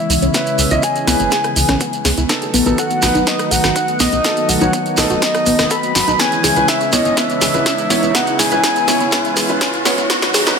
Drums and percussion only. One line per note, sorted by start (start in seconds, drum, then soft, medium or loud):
0.10 open hi-hat medium
0.10 shekere medium
0.22 closed hi-hat soft
0.22 shekere soft
0.34 kick loud
0.34 snare medium
0.34 closed hi-hat medium
0.34 shekere medium
0.46 closed hi-hat soft
0.46 shekere soft
0.59 open hi-hat loud
0.59 shekere medium
0.71 closed hi-hat soft
0.71 shekere soft
0.83 kick loud
0.83 closed hi-hat medium
0.83 shekere medium
0.96 closed hi-hat soft
0.96 shekere soft
1.07 cross-stick medium
1.07 snare medium
1.07 open hi-hat medium
1.07 shekere loud
1.19 closed hi-hat soft
1.19 shekere soft
1.31 kick loud
1.31 snare medium
1.31 closed hi-hat medium
1.31 shekere medium
1.44 cross-stick medium
1.44 closed hi-hat soft
1.44 shekere soft
1.56 open hi-hat loud
1.56 shekere medium
1.69 cross-stick medium
1.69 snare soft
1.69 closed hi-hat soft
1.69 shekere soft
1.80 kick loud
1.80 closed hi-hat medium
1.80 shekere medium
1.93 closed hi-hat soft
1.93 shekere soft
2.05 snare medium
2.05 open hi-hat medium
2.05 shekere loud
2.17 closed hi-hat soft
2.17 shekere soft
2.29 kick loud
2.29 snare medium
2.29 closed hi-hat medium
2.29 shekere medium
2.42 closed hi-hat soft
2.42 shekere soft
2.54 open hi-hat loud
2.54 shekere loud
2.66 closed hi-hat soft
2.66 shekere soft
2.78 kick loud
2.78 closed hi-hat medium
2.78 shekere medium
2.90 closed hi-hat soft
2.90 shekere soft
3.02 cross-stick medium
3.02 snare medium
3.02 open hi-hat medium
3.02 shekere loud
3.15 closed hi-hat soft
3.15 shekere soft
3.27 kick loud
3.27 snare medium
3.27 closed hi-hat medium
3.27 shekere medium
3.39 cross-stick medium
3.39 closed hi-hat soft
3.39 shekere soft
3.51 open hi-hat loud
3.51 shekere medium
3.64 cross-stick medium
3.64 snare medium
3.64 closed hi-hat soft
3.64 shekere soft
3.76 kick loud
3.76 closed hi-hat medium
3.76 shekere medium
3.88 closed hi-hat soft
3.88 shekere soft
4.00 snare medium
4.00 open hi-hat loud
4.00 shekere loud
4.13 closed hi-hat soft
4.13 shekere soft
4.24 kick loud
4.24 snare medium
4.24 closed hi-hat medium
4.24 shekere medium
4.36 closed hi-hat soft
4.36 shekere soft
4.49 open hi-hat loud
4.49 shekere medium
4.61 closed hi-hat soft
4.61 shekere soft
4.73 kick loud
4.73 closed hi-hat medium
4.73 shekere soft
4.86 closed hi-hat soft
4.86 shekere soft
4.97 cross-stick medium
4.97 snare medium
4.97 open hi-hat medium
4.97 shekere medium
5.10 closed hi-hat soft
5.10 shekere soft
5.22 kick loud
5.22 snare medium
5.22 closed hi-hat medium
5.22 shekere medium
5.35 cross-stick medium
5.35 closed hi-hat soft
5.35 shekere soft
5.46 open hi-hat loud
5.46 shekere medium
5.59 cross-stick medium
5.59 snare medium
5.59 closed hi-hat soft
5.59 shekere soft
5.70 kick loud
5.70 closed hi-hat medium
5.70 shekere medium
5.83 closed hi-hat soft
5.83 shekere soft
5.95 snare medium
5.95 open hi-hat loud
5.95 shekere medium
6.08 closed hi-hat soft
6.08 shekere soft
6.19 kick loud
6.19 snare medium
6.19 closed hi-hat medium
6.19 shekere medium
6.32 closed hi-hat soft
6.32 shekere soft
6.44 snare medium
6.44 open hi-hat loud
6.44 shekere medium
6.56 closed hi-hat soft
6.56 shekere soft
6.68 kick loud
6.68 snare medium
6.68 closed hi-hat medium
6.68 shekere soft
6.81 closed hi-hat soft
6.81 shekere soft
6.92 snare medium
6.92 open hi-hat medium
6.92 shekere loud
7.05 closed hi-hat soft
7.05 shekere soft
7.17 kick loud
7.17 snare medium
7.17 closed hi-hat medium
7.17 shekere medium
7.30 closed hi-hat soft
7.30 shekere soft
7.41 snare medium
7.41 open hi-hat loud
7.41 shekere loud
7.54 closed hi-hat soft
7.54 shekere soft
7.66 kick loud
7.66 snare medium
7.66 closed hi-hat medium
7.66 shekere medium
7.78 closed hi-hat soft
7.78 shekere soft
7.90 snare medium
7.90 open hi-hat medium
7.90 shekere medium
8.03 closed hi-hat soft
8.03 shekere soft
8.15 kick loud
8.15 snare medium
8.15 closed hi-hat medium
8.15 shekere soft
8.27 closed hi-hat soft
8.27 shekere soft
8.39 snare medium
8.39 open hi-hat loud
8.39 shekere medium
8.51 closed hi-hat soft
8.51 shekere soft
8.64 kick loud
8.64 snare medium
8.64 closed hi-hat medium
8.64 shekere medium
8.76 closed hi-hat soft
8.76 shekere soft
8.88 snare medium
8.88 open hi-hat medium
8.88 shekere loud
9.00 closed hi-hat soft
9.00 shekere soft
9.12 kick loud
9.12 snare medium
9.12 closed hi-hat medium
9.12 shekere soft
9.25 closed hi-hat soft
9.25 shekere soft
9.37 snare medium
9.37 open hi-hat loud
9.37 shekere medium
9.49 closed hi-hat soft
9.49 shekere soft
9.61 kick loud
9.61 snare medium
9.61 closed hi-hat medium
9.61 shekere soft
9.74 closed hi-hat soft
9.74 shekere soft
9.85 snare medium
9.85 open hi-hat medium
9.85 shekere loud
9.98 closed hi-hat soft
9.98 shekere soft
10.10 kick loud
10.10 snare medium
10.10 closed hi-hat medium
10.10 shekere soft
10.22 snare medium
10.22 closed hi-hat soft
10.22 shekere soft
10.34 snare loud
10.34 open hi-hat loud
10.34 shekere medium
10.47 snare medium
10.47 shekere soft